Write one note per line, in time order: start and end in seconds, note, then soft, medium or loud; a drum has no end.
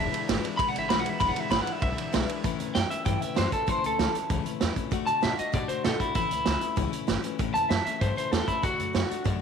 0.00 0.12 E1 loud
0.00 0.12 E2 medium
0.00 0.12 B2 medium
0.00 0.12 E3 medium
0.00 0.12 G#3 medium
0.00 0.11 D4 medium
0.00 0.10 E4 medium
0.00 0.27 E5 loud
0.12 0.27 E3 soft
0.12 0.28 G#3 soft
0.12 0.28 D4 soft
0.12 0.28 E4 medium
0.12 muted upright bass stroke medium
0.12 ride medium
0.28 0.43 G#1 medium
0.28 0.43 E2 medium
0.28 0.44 B2 medium
0.28 0.44 E3 medium
0.28 0.44 G#3 medium
0.28 0.42 D4 medium
0.28 0.42 E4 medium
0.28 snare loud
0.28 ride medium
0.43 0.58 E3 medium
0.43 0.59 G#3 medium
0.43 0.59 D4 medium
0.43 0.59 E4 medium
0.43 ride medium
0.57 0.74 B1 medium
0.57 0.75 E3 medium
0.57 0.74 G#3 medium
0.57 0.74 D4 medium
0.57 0.68 B5 loud
0.57 kick loud
0.57 ride medium
0.62 0.73 E4 medium
0.68 0.78 F#5 medium
0.74 0.89 G#1 medium
0.74 0.89 E3 soft
0.74 0.89 G#3 soft
0.74 0.90 D4 medium
0.74 0.89 E4 medium
0.74 ride medium
0.79 0.89 E5 medium
0.89 1.04 B1 loud
0.89 1.05 E2 medium
0.89 1.05 B2 medium
0.89 1.05 E3 medium
0.89 1.05 G#3 medium
0.89 1.03 D4 medium
0.89 1.02 E4 medium
0.89 1.00 B5 loud
0.89 snare loud
0.89 ride medium
1.00 1.19 E4 medium
1.00 1.09 F#5 medium
1.05 1.20 D2 medium
1.05 1.19 E3 soft
1.05 1.19 G#3 medium
1.05 1.19 D4 medium
1.05 ride medium
1.09 1.20 E5 medium
1.20 1.35 E1 loud
1.20 1.36 E2 medium
1.20 1.36 B2 medium
1.20 1.36 E3 medium
1.20 1.36 G#3 medium
1.20 1.35 D4 medium
1.20 1.34 E4 medium
1.20 1.30 B5 loud
1.20 kick loud
1.20 ride medium
1.28 1.40 F#5 medium
1.35 1.50 E3 soft
1.35 1.50 G#3 soft
1.35 1.50 D4 soft
1.35 1.50 E4 medium
1.35 muted upright bass stroke medium
1.35 ride medium
1.40 1.51 E5 loud
1.50 1.66 G#1 medium
1.50 1.66 E2 medium
1.50 1.67 B2 medium
1.50 1.65 E3 medium
1.50 1.65 G#3 medium
1.50 1.64 D4 medium
1.50 1.63 E4 medium
1.50 1.61 B5 loud
1.50 snare loud
1.50 ride medium
1.62 1.79 E3 soft
1.62 1.80 G#3 soft
1.62 1.81 D4 medium
1.62 1.81 E4 medium
1.62 1.72 F#5 loud
1.67 muted upright bass stroke medium
1.67 ride medium
1.72 1.81 E5 loud
1.80 1.97 B1 medium
1.80 1.97 E3 medium
1.80 1.97 G#3 medium
1.80 1.96 D4 medium
1.80 1.96 E4 medium
1.80 2.43 E5 loud
1.80 kick loud
1.80 ride medium
1.97 2.11 E3 soft
1.97 2.12 G#3 soft
1.97 2.12 D4 soft
1.97 2.13 E4 medium
1.97 ride medium
2.12 2.29 B1 loud
2.12 2.29 E2 medium
2.12 2.29 B2 medium
2.12 2.29 E3 medium
2.12 2.28 G#3 medium
2.12 2.27 D4 medium
2.12 2.27 E4 loud
2.12 snare loud
2.12 ride medium
2.28 2.43 E3 medium
2.28 2.44 G#3 medium
2.28 2.44 D4 medium
2.28 2.44 E4 medium
2.28 ride medium
2.44 2.55 A1 loud
2.44 2.60 A2 medium
2.44 2.60 E3 medium
2.44 2.60 A3 loud
2.44 2.58 C#4 loud
2.44 2.57 E4 loud
2.44 kick loud
2.44 closed hi-hat medium
2.59 2.71 E2 medium
2.59 2.74 A3 soft
2.59 2.75 C#4 medium
2.59 2.75 E4 medium
2.59 closed hi-hat medium
2.74 2.87 F#2 medium
2.74 2.90 E3 medium
2.74 2.90 A3 medium
2.74 2.89 C#4 medium
2.74 2.88 E4 medium
2.74 2.90 G5 loud
2.74 snare loud
2.74 closed hi-hat medium
2.89 3.05 A3 soft
2.89 3.06 C#4 medium
2.89 3.06 E4 medium
2.89 3.05 E5 medium
2.89 muted upright bass stroke medium
2.89 closed hi-hat medium
3.05 3.17 G2 medium
3.05 3.21 A2 medium
3.05 3.21 E3 medium
3.05 3.21 A3 medium
3.05 3.20 C#4 medium
3.05 3.19 E4 medium
3.05 3.21 G5 medium
3.05 kick loud
3.05 closed hi-hat medium
3.20 3.34 A3 soft
3.20 3.35 C#4 medium
3.20 3.36 E4 medium
3.20 3.36 E5 medium
3.20 muted upright bass stroke medium
3.20 closed hi-hat medium
3.34 3.51 E3 medium
3.34 3.52 A3 medium
3.34 3.51 C#4 medium
3.34 3.50 E4 medium
3.34 3.53 C5 medium
3.34 snare loud
3.34 closed hi-hat medium
3.38 3.49 F#2 medium
3.51 3.66 A3 soft
3.51 3.67 C#4 soft
3.51 3.67 E4 medium
3.51 3.69 A4 medium
3.51 kick medium
3.51 closed hi-hat medium
3.67 3.79 E2 medium
3.67 3.83 A2 medium
3.67 3.83 E3 medium
3.67 3.83 A3 medium
3.67 3.83 C#4 medium
3.67 3.81 E4 medium
3.67 3.84 C5 medium
3.67 kick loud
3.67 closed hi-hat medium
3.82 3.94 C#2 medium
3.82 3.99 A3 soft
3.82 3.99 C#4 soft
3.82 3.98 E4 medium
3.82 4.15 A4 medium
3.82 closed hi-hat medium
3.99 4.10 C#2 medium
3.99 4.15 E3 medium
3.99 4.15 A3 medium
3.99 4.14 C#4 medium
3.99 4.13 E4 medium
3.99 snare loud
3.99 closed hi-hat medium
4.15 4.29 A3 soft
4.15 4.29 C#4 soft
4.15 4.29 E4 medium
4.15 closed hi-hat medium
4.30 4.41 C#2 medium
4.30 4.45 A2 medium
4.30 4.45 E3 medium
4.30 4.44 A3 medium
4.30 4.44 C#4 medium
4.30 4.42 E4 loud
4.30 kick loud
4.30 closed hi-hat medium
4.44 4.60 A3 soft
4.44 4.61 C#4 medium
4.44 4.60 E4 medium
4.44 muted upright bass stroke medium
4.44 closed hi-hat medium
4.61 4.73 E2 loud
4.61 4.76 E3 medium
4.61 4.77 A3 medium
4.61 4.76 C#4 medium
4.61 4.75 E4 medium
4.61 snare loud
4.61 closed hi-hat medium
4.76 4.91 A3 soft
4.76 4.92 C#4 medium
4.76 4.92 E4 medium
4.76 kick medium
4.76 closed hi-hat medium
4.91 5.03 D2 loud
4.91 5.07 D3 medium
4.91 5.08 A3 medium
4.91 5.07 D4 medium
4.91 5.06 F#4 medium
4.91 kick loud
4.91 closed hi-hat medium
5.06 5.19 A2 medium
5.06 5.21 A3 soft
5.06 5.21 D4 soft
5.06 5.22 F#4 medium
5.06 5.22 A5 medium
5.06 closed hi-hat medium
5.21 5.35 B2 medium
5.21 5.37 D3 medium
5.21 5.38 A3 medium
5.21 5.37 D4 medium
5.21 5.36 F#4 medium
5.21 5.38 E5 loud
5.21 snare loud
5.21 closed hi-hat medium
5.37 5.52 A3 soft
5.37 5.52 D4 medium
5.37 5.52 F#4 medium
5.37 5.54 D#5 medium
5.37 muted upright bass stroke medium
5.37 closed hi-hat medium
5.52 5.65 B2 medium
5.52 5.68 D3 medium
5.52 5.69 A3 medium
5.52 5.68 D4 medium
5.52 5.67 F#4 medium
5.52 5.69 D5 loud
5.52 kick loud
5.52 closed hi-hat medium
5.68 5.84 A3 soft
5.68 5.85 D4 soft
5.68 5.84 F#4 soft
5.68 5.84 C5 medium
5.68 muted upright bass stroke medium
5.68 closed hi-hat medium
5.84 5.97 B2 loud
5.84 6.00 D3 medium
5.84 6.01 A3 medium
5.84 6.00 D4 medium
5.84 5.99 F#4 medium
5.84 6.00 A4 loud
5.84 snare loud
5.84 closed hi-hat medium
6.00 6.16 A3 soft
6.00 6.16 D4 medium
6.00 6.14 E4 medium
6.00 6.16 F#4 medium
6.00 muted upright bass stroke medium
6.00 kick medium
6.00 closed hi-hat medium
6.15 6.26 A1 loud
6.15 6.31 A2 medium
6.15 6.32 E3 medium
6.15 6.32 A3 medium
6.15 6.31 C#4 medium
6.15 6.76 E4 loud
6.15 6.30 E4 medium
6.15 kick loud
6.15 closed hi-hat medium
6.31 6.42 C#2 medium
6.31 6.45 A3 soft
6.31 6.46 C#4 soft
6.31 6.46 E4 medium
6.31 closed hi-hat medium
6.46 6.57 C#2 medium
6.46 6.62 E3 medium
6.46 6.62 A3 medium
6.46 6.61 C#4 medium
6.46 6.60 E4 medium
6.46 snare loud
6.46 closed hi-hat medium
6.61 6.76 A3 soft
6.61 6.76 C#4 medium
6.61 6.77 E4 medium
6.61 closed hi-hat medium
6.76 6.88 C#2 medium
6.76 6.92 A2 medium
6.76 6.93 E3 medium
6.76 6.92 A3 medium
6.76 6.91 C#4 loud
6.76 6.91 E4 loud
6.76 kick loud
6.76 closed hi-hat medium
6.92 7.07 A3 soft
6.92 7.07 C#4 medium
6.92 7.08 E4 medium
6.92 muted upright bass stroke medium
6.92 closed hi-hat medium
7.07 7.19 G1 medium
7.07 7.23 E3 medium
7.07 7.23 A3 medium
7.07 7.23 C#4 medium
7.07 7.21 E4 medium
7.07 snare loud
7.07 closed hi-hat medium
7.22 7.38 A3 medium
7.22 7.39 C#4 medium
7.22 7.39 E4 medium
7.22 closed hi-hat medium
7.39 7.50 A1 medium
7.39 7.55 A2 medium
7.39 7.55 E3 medium
7.39 7.55 A3 medium
7.39 7.55 C#4 loud
7.39 7.54 E4 loud
7.39 kick loud
7.39 closed hi-hat medium
7.54 7.66 E2 medium
7.54 7.69 A3 soft
7.54 7.70 C#4 soft
7.54 7.71 E4 medium
7.54 7.70 A5 medium
7.54 closed hi-hat medium
7.69 7.81 F#2 medium
7.69 7.85 E3 medium
7.69 7.86 A3 medium
7.69 7.86 C#4 medium
7.69 7.85 E4 medium
7.69 7.84 E5 medium
7.69 snare loud
7.69 closed hi-hat medium
7.85 8.01 A3 soft
7.85 8.01 C#4 medium
7.85 8.01 E4 medium
7.85 8.01 E5 loud
7.85 muted upright bass stroke medium
7.85 closed hi-hat medium
8.01 8.12 G2 medium
8.01 8.17 A2 medium
8.01 8.17 E3 medium
8.01 8.17 A3 medium
8.01 8.16 C#4 medium
8.01 8.15 E4 medium
8.01 8.16 C5 medium
8.01 kick loud
8.01 closed hi-hat medium
8.16 8.31 A3 soft
8.16 8.32 C#4 soft
8.16 8.32 E4 medium
8.16 8.31 C5 medium
8.16 muted upright bass stroke medium
8.16 closed hi-hat medium
8.31 8.43 E2 medium
8.31 8.48 E3 medium
8.31 8.48 A3 medium
8.31 8.48 C#4 medium
8.31 8.46 E4 medium
8.31 8.47 A4 loud
8.31 snare loud
8.31 closed hi-hat medium
8.47 8.62 A3 soft
8.47 8.63 C#4 medium
8.47 8.63 E4 medium
8.47 8.63 E4 loud
8.47 kick medium
8.47 closed hi-hat medium
8.62 8.74 D2 loud
8.62 8.78 D3 medium
8.62 8.78 A3 medium
8.62 8.78 D4 medium
8.62 8.76 F#4 medium
8.62 9.24 F#4 loud
8.62 kick loud
8.62 closed hi-hat medium
8.77 8.90 F#2 medium
8.77 8.93 A3 soft
8.77 8.94 D4 soft
8.77 8.94 F#4 medium
8.77 closed hi-hat medium
8.93 9.06 F#2 medium
8.93 9.09 D3 medium
8.93 9.10 A3 medium
8.93 9.09 D4 medium
8.93 9.07 F#4 medium
8.93 snare loud
8.93 closed hi-hat medium
9.09 9.24 A3 medium
9.09 9.24 D4 medium
9.09 9.25 F#4 medium
9.09 muted upright bass stroke medium
9.09 closed hi-hat medium
9.24 9.36 F#2 medium
9.24 9.40 D3 medium
9.24 9.41 A3 medium
9.24 9.39 D4 medium
9.24 9.38 F#4 loud
9.24 kick loud
9.24 closed hi-hat medium